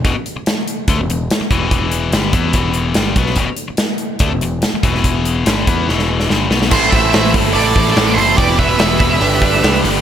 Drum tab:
CC |----------------|----------------|----------------|----------------|
HH |x-x-x-x-x-x-x-x-|x-x-x-x-x-x-x-x-|x-x-x-x-x-x-x-x-|x-x-x-x---------|
SD |----o-------o---|----o-------o--o|----o-------o--o|----o---oo-oo-oo|
BD |o-------o-----o-|o-----o-o-----o-|o-------o-----o-|o-----o---------|

CC |x---------------|----------------|
HH |--o-o-o-o-o-o-o-|o-o-o-o-o-o-o-o-|
SD |----o------oo---|----o------oo---|
BD |o-o---o---o-----|o-o---o---o-----|